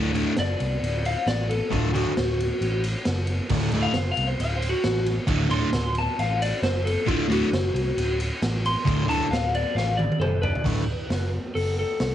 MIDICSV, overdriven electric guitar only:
0, 0, Header, 1, 2, 480
1, 0, Start_track
1, 0, Tempo, 447094
1, 1842, Time_signature, 4, 2, 24, 8
1, 13043, End_track
2, 0, Start_track
2, 0, Title_t, "Overdriven electric guitar"
2, 0, Program_c, 0, 29
2, 0, Note_on_c, 0, 45, 103
2, 0, Note_on_c, 0, 50, 116
2, 112, Note_off_c, 0, 45, 0
2, 117, Note_off_c, 0, 50, 0
2, 144, Note_on_c, 0, 38, 101
2, 163, Note_on_c, 0, 45, 89
2, 166, Note_on_c, 0, 50, 112
2, 343, Note_off_c, 0, 38, 0
2, 353, Note_off_c, 0, 45, 0
2, 354, Note_off_c, 0, 50, 0
2, 1828, Note_on_c, 0, 38, 97
2, 1840, Note_on_c, 0, 45, 92
2, 1852, Note_on_c, 0, 50, 106
2, 2027, Note_off_c, 0, 38, 0
2, 2034, Note_off_c, 0, 45, 0
2, 2040, Note_off_c, 0, 50, 0
2, 2072, Note_on_c, 0, 38, 102
2, 2079, Note_on_c, 0, 45, 97
2, 2090, Note_on_c, 0, 50, 100
2, 2270, Note_off_c, 0, 38, 0
2, 2274, Note_off_c, 0, 45, 0
2, 2279, Note_off_c, 0, 50, 0
2, 3759, Note_on_c, 0, 38, 97
2, 3779, Note_on_c, 0, 45, 107
2, 3779, Note_on_c, 0, 50, 101
2, 3954, Note_off_c, 0, 38, 0
2, 3964, Note_off_c, 0, 45, 0
2, 3965, Note_off_c, 0, 50, 0
2, 4006, Note_on_c, 0, 38, 91
2, 4022, Note_on_c, 0, 45, 98
2, 4026, Note_on_c, 0, 50, 95
2, 4198, Note_off_c, 0, 38, 0
2, 4206, Note_off_c, 0, 45, 0
2, 4208, Note_off_c, 0, 50, 0
2, 5657, Note_on_c, 0, 38, 98
2, 5669, Note_on_c, 0, 45, 98
2, 5677, Note_on_c, 0, 50, 108
2, 5863, Note_off_c, 0, 38, 0
2, 5870, Note_off_c, 0, 45, 0
2, 5873, Note_off_c, 0, 50, 0
2, 5892, Note_on_c, 0, 38, 92
2, 5899, Note_on_c, 0, 45, 109
2, 5906, Note_on_c, 0, 50, 109
2, 6100, Note_off_c, 0, 38, 0
2, 6104, Note_off_c, 0, 45, 0
2, 6108, Note_off_c, 0, 50, 0
2, 7581, Note_on_c, 0, 38, 107
2, 7593, Note_on_c, 0, 45, 98
2, 7600, Note_on_c, 0, 50, 107
2, 7783, Note_off_c, 0, 38, 0
2, 7789, Note_off_c, 0, 45, 0
2, 7792, Note_off_c, 0, 50, 0
2, 7820, Note_on_c, 0, 38, 100
2, 7830, Note_on_c, 0, 45, 120
2, 7846, Note_on_c, 0, 50, 109
2, 8022, Note_off_c, 0, 38, 0
2, 8027, Note_off_c, 0, 45, 0
2, 8035, Note_off_c, 0, 50, 0
2, 9501, Note_on_c, 0, 38, 98
2, 9514, Note_on_c, 0, 45, 107
2, 9526, Note_on_c, 0, 50, 102
2, 9699, Note_off_c, 0, 38, 0
2, 9706, Note_off_c, 0, 45, 0
2, 9711, Note_off_c, 0, 50, 0
2, 9740, Note_on_c, 0, 38, 97
2, 9752, Note_on_c, 0, 45, 94
2, 9759, Note_on_c, 0, 50, 120
2, 9938, Note_off_c, 0, 38, 0
2, 9944, Note_off_c, 0, 45, 0
2, 9948, Note_off_c, 0, 50, 0
2, 11431, Note_on_c, 0, 38, 88
2, 11447, Note_on_c, 0, 45, 106
2, 11450, Note_on_c, 0, 50, 96
2, 11624, Note_off_c, 0, 38, 0
2, 11632, Note_off_c, 0, 45, 0
2, 11634, Note_off_c, 0, 50, 0
2, 13043, End_track
0, 0, End_of_file